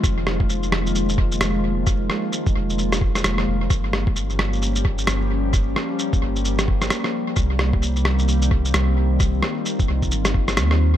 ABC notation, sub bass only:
X:1
M:4/4
L:1/8
Q:"Swing 16ths" 1/4=131
K:Fm
V:1 name="Sub bass" clef=bass
F,,,6 F,,,2- | F,,, z2 F,,,3 F,,, F,,, | G,,,6 G,,,2- | G,,, z2 G,,,3 z2 |
C,,6 C,,2- | C,, z2 C,, G,,,2 E,,2 |]